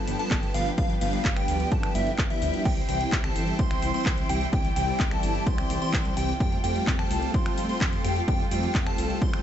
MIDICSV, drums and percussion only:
0, 0, Header, 1, 2, 480
1, 0, Start_track
1, 0, Key_signature, 0, "major"
1, 0, Tempo, 468750
1, 798, Time_signature, 4, 2, 24, 8
1, 9651, End_track
2, 0, Start_track
2, 0, Title_t, "Drums"
2, 77, Note_on_c, 9, 46, 102
2, 179, Note_off_c, 9, 46, 0
2, 198, Note_on_c, 9, 42, 40
2, 300, Note_off_c, 9, 42, 0
2, 317, Note_on_c, 9, 36, 115
2, 317, Note_on_c, 9, 39, 118
2, 317, Note_on_c, 9, 42, 69
2, 419, Note_off_c, 9, 39, 0
2, 419, Note_off_c, 9, 42, 0
2, 420, Note_off_c, 9, 36, 0
2, 438, Note_on_c, 9, 42, 42
2, 540, Note_off_c, 9, 42, 0
2, 557, Note_on_c, 9, 46, 102
2, 660, Note_off_c, 9, 46, 0
2, 678, Note_on_c, 9, 42, 40
2, 780, Note_off_c, 9, 42, 0
2, 797, Note_on_c, 9, 42, 69
2, 798, Note_on_c, 9, 36, 115
2, 900, Note_off_c, 9, 36, 0
2, 900, Note_off_c, 9, 42, 0
2, 919, Note_on_c, 9, 42, 41
2, 1021, Note_off_c, 9, 42, 0
2, 1038, Note_on_c, 9, 46, 110
2, 1140, Note_off_c, 9, 46, 0
2, 1158, Note_on_c, 9, 42, 43
2, 1261, Note_off_c, 9, 42, 0
2, 1278, Note_on_c, 9, 36, 114
2, 1278, Note_on_c, 9, 39, 115
2, 1278, Note_on_c, 9, 42, 71
2, 1380, Note_off_c, 9, 36, 0
2, 1380, Note_off_c, 9, 42, 0
2, 1381, Note_off_c, 9, 39, 0
2, 1398, Note_on_c, 9, 26, 73
2, 1398, Note_on_c, 9, 42, 43
2, 1500, Note_off_c, 9, 26, 0
2, 1500, Note_off_c, 9, 42, 0
2, 1517, Note_on_c, 9, 46, 106
2, 1620, Note_off_c, 9, 46, 0
2, 1638, Note_on_c, 9, 42, 42
2, 1740, Note_off_c, 9, 42, 0
2, 1757, Note_on_c, 9, 42, 71
2, 1758, Note_on_c, 9, 36, 114
2, 1860, Note_off_c, 9, 36, 0
2, 1860, Note_off_c, 9, 42, 0
2, 1878, Note_on_c, 9, 26, 69
2, 1878, Note_on_c, 9, 42, 43
2, 1980, Note_off_c, 9, 26, 0
2, 1980, Note_off_c, 9, 42, 0
2, 1997, Note_on_c, 9, 46, 103
2, 2100, Note_off_c, 9, 46, 0
2, 2117, Note_on_c, 9, 42, 42
2, 2220, Note_off_c, 9, 42, 0
2, 2237, Note_on_c, 9, 42, 70
2, 2238, Note_on_c, 9, 36, 112
2, 2238, Note_on_c, 9, 39, 124
2, 2340, Note_off_c, 9, 36, 0
2, 2340, Note_off_c, 9, 39, 0
2, 2340, Note_off_c, 9, 42, 0
2, 2357, Note_on_c, 9, 42, 42
2, 2460, Note_off_c, 9, 42, 0
2, 2477, Note_on_c, 9, 46, 104
2, 2579, Note_off_c, 9, 46, 0
2, 2597, Note_on_c, 9, 42, 41
2, 2699, Note_off_c, 9, 42, 0
2, 2718, Note_on_c, 9, 36, 122
2, 2718, Note_on_c, 9, 42, 68
2, 2718, Note_on_c, 9, 49, 73
2, 2820, Note_off_c, 9, 36, 0
2, 2820, Note_off_c, 9, 42, 0
2, 2820, Note_off_c, 9, 49, 0
2, 2837, Note_on_c, 9, 42, 43
2, 2940, Note_off_c, 9, 42, 0
2, 2957, Note_on_c, 9, 46, 108
2, 3059, Note_off_c, 9, 46, 0
2, 3078, Note_on_c, 9, 42, 42
2, 3181, Note_off_c, 9, 42, 0
2, 3198, Note_on_c, 9, 36, 119
2, 3198, Note_on_c, 9, 39, 125
2, 3198, Note_on_c, 9, 42, 69
2, 3300, Note_off_c, 9, 36, 0
2, 3300, Note_off_c, 9, 39, 0
2, 3300, Note_off_c, 9, 42, 0
2, 3317, Note_on_c, 9, 26, 68
2, 3317, Note_on_c, 9, 42, 44
2, 3420, Note_off_c, 9, 26, 0
2, 3420, Note_off_c, 9, 42, 0
2, 3438, Note_on_c, 9, 46, 110
2, 3540, Note_off_c, 9, 46, 0
2, 3557, Note_on_c, 9, 42, 42
2, 3659, Note_off_c, 9, 42, 0
2, 3676, Note_on_c, 9, 42, 70
2, 3677, Note_on_c, 9, 36, 120
2, 3779, Note_off_c, 9, 42, 0
2, 3780, Note_off_c, 9, 36, 0
2, 3797, Note_on_c, 9, 26, 70
2, 3797, Note_on_c, 9, 42, 43
2, 3899, Note_off_c, 9, 26, 0
2, 3899, Note_off_c, 9, 42, 0
2, 3916, Note_on_c, 9, 46, 106
2, 4019, Note_off_c, 9, 46, 0
2, 4037, Note_on_c, 9, 42, 42
2, 4139, Note_off_c, 9, 42, 0
2, 4156, Note_on_c, 9, 42, 71
2, 4157, Note_on_c, 9, 36, 117
2, 4157, Note_on_c, 9, 39, 127
2, 4259, Note_off_c, 9, 39, 0
2, 4259, Note_off_c, 9, 42, 0
2, 4260, Note_off_c, 9, 36, 0
2, 4277, Note_on_c, 9, 42, 42
2, 4380, Note_off_c, 9, 42, 0
2, 4397, Note_on_c, 9, 46, 109
2, 4500, Note_off_c, 9, 46, 0
2, 4517, Note_on_c, 9, 42, 42
2, 4619, Note_off_c, 9, 42, 0
2, 4637, Note_on_c, 9, 36, 125
2, 4637, Note_on_c, 9, 42, 65
2, 4739, Note_off_c, 9, 36, 0
2, 4739, Note_off_c, 9, 42, 0
2, 4757, Note_on_c, 9, 42, 40
2, 4859, Note_off_c, 9, 42, 0
2, 4877, Note_on_c, 9, 46, 112
2, 4980, Note_off_c, 9, 46, 0
2, 4997, Note_on_c, 9, 42, 41
2, 5100, Note_off_c, 9, 42, 0
2, 5117, Note_on_c, 9, 36, 126
2, 5117, Note_on_c, 9, 42, 66
2, 5118, Note_on_c, 9, 39, 124
2, 5219, Note_off_c, 9, 36, 0
2, 5220, Note_off_c, 9, 39, 0
2, 5220, Note_off_c, 9, 42, 0
2, 5237, Note_on_c, 9, 26, 65
2, 5237, Note_on_c, 9, 42, 42
2, 5339, Note_off_c, 9, 26, 0
2, 5339, Note_off_c, 9, 42, 0
2, 5357, Note_on_c, 9, 46, 111
2, 5459, Note_off_c, 9, 46, 0
2, 5478, Note_on_c, 9, 42, 40
2, 5580, Note_off_c, 9, 42, 0
2, 5597, Note_on_c, 9, 36, 120
2, 5597, Note_on_c, 9, 42, 70
2, 5699, Note_off_c, 9, 36, 0
2, 5699, Note_off_c, 9, 42, 0
2, 5717, Note_on_c, 9, 26, 66
2, 5717, Note_on_c, 9, 42, 43
2, 5820, Note_off_c, 9, 26, 0
2, 5820, Note_off_c, 9, 42, 0
2, 5837, Note_on_c, 9, 46, 110
2, 5939, Note_off_c, 9, 46, 0
2, 5958, Note_on_c, 9, 42, 40
2, 6060, Note_off_c, 9, 42, 0
2, 6077, Note_on_c, 9, 36, 119
2, 6078, Note_on_c, 9, 39, 127
2, 6078, Note_on_c, 9, 42, 70
2, 6179, Note_off_c, 9, 36, 0
2, 6180, Note_off_c, 9, 42, 0
2, 6181, Note_off_c, 9, 39, 0
2, 6197, Note_on_c, 9, 42, 41
2, 6300, Note_off_c, 9, 42, 0
2, 6317, Note_on_c, 9, 46, 110
2, 6419, Note_off_c, 9, 46, 0
2, 6438, Note_on_c, 9, 42, 42
2, 6540, Note_off_c, 9, 42, 0
2, 6557, Note_on_c, 9, 36, 127
2, 6558, Note_on_c, 9, 42, 64
2, 6659, Note_off_c, 9, 36, 0
2, 6660, Note_off_c, 9, 42, 0
2, 6678, Note_on_c, 9, 42, 40
2, 6781, Note_off_c, 9, 42, 0
2, 6798, Note_on_c, 9, 46, 112
2, 6900, Note_off_c, 9, 46, 0
2, 6919, Note_on_c, 9, 42, 39
2, 7021, Note_off_c, 9, 42, 0
2, 7038, Note_on_c, 9, 36, 127
2, 7038, Note_on_c, 9, 39, 122
2, 7038, Note_on_c, 9, 42, 64
2, 7140, Note_off_c, 9, 36, 0
2, 7140, Note_off_c, 9, 42, 0
2, 7141, Note_off_c, 9, 39, 0
2, 7158, Note_on_c, 9, 26, 64
2, 7158, Note_on_c, 9, 42, 39
2, 7261, Note_off_c, 9, 26, 0
2, 7261, Note_off_c, 9, 42, 0
2, 7278, Note_on_c, 9, 46, 116
2, 7380, Note_off_c, 9, 46, 0
2, 7398, Note_on_c, 9, 42, 38
2, 7500, Note_off_c, 9, 42, 0
2, 7518, Note_on_c, 9, 36, 123
2, 7519, Note_on_c, 9, 42, 66
2, 7620, Note_off_c, 9, 36, 0
2, 7621, Note_off_c, 9, 42, 0
2, 7638, Note_on_c, 9, 26, 65
2, 7638, Note_on_c, 9, 42, 41
2, 7741, Note_off_c, 9, 26, 0
2, 7741, Note_off_c, 9, 42, 0
2, 7758, Note_on_c, 9, 46, 109
2, 7860, Note_off_c, 9, 46, 0
2, 7878, Note_on_c, 9, 42, 39
2, 7980, Note_off_c, 9, 42, 0
2, 7998, Note_on_c, 9, 36, 126
2, 7999, Note_on_c, 9, 39, 127
2, 7999, Note_on_c, 9, 42, 67
2, 8100, Note_off_c, 9, 36, 0
2, 8101, Note_off_c, 9, 42, 0
2, 8102, Note_off_c, 9, 39, 0
2, 8119, Note_on_c, 9, 42, 41
2, 8221, Note_off_c, 9, 42, 0
2, 8238, Note_on_c, 9, 46, 113
2, 8341, Note_off_c, 9, 46, 0
2, 8358, Note_on_c, 9, 42, 39
2, 8460, Note_off_c, 9, 42, 0
2, 8478, Note_on_c, 9, 36, 126
2, 8479, Note_on_c, 9, 42, 63
2, 8580, Note_off_c, 9, 36, 0
2, 8581, Note_off_c, 9, 42, 0
2, 8598, Note_on_c, 9, 42, 38
2, 8701, Note_off_c, 9, 42, 0
2, 8719, Note_on_c, 9, 46, 113
2, 8821, Note_off_c, 9, 46, 0
2, 8839, Note_on_c, 9, 42, 40
2, 8941, Note_off_c, 9, 42, 0
2, 8958, Note_on_c, 9, 36, 122
2, 8958, Note_on_c, 9, 42, 61
2, 8959, Note_on_c, 9, 39, 114
2, 9060, Note_off_c, 9, 36, 0
2, 9061, Note_off_c, 9, 39, 0
2, 9061, Note_off_c, 9, 42, 0
2, 9079, Note_on_c, 9, 26, 67
2, 9079, Note_on_c, 9, 42, 38
2, 9181, Note_off_c, 9, 26, 0
2, 9181, Note_off_c, 9, 42, 0
2, 9198, Note_on_c, 9, 46, 112
2, 9301, Note_off_c, 9, 46, 0
2, 9319, Note_on_c, 9, 42, 39
2, 9421, Note_off_c, 9, 42, 0
2, 9437, Note_on_c, 9, 36, 122
2, 9438, Note_on_c, 9, 42, 63
2, 9540, Note_off_c, 9, 36, 0
2, 9541, Note_off_c, 9, 42, 0
2, 9559, Note_on_c, 9, 26, 66
2, 9559, Note_on_c, 9, 42, 40
2, 9651, Note_off_c, 9, 26, 0
2, 9651, Note_off_c, 9, 42, 0
2, 9651, End_track
0, 0, End_of_file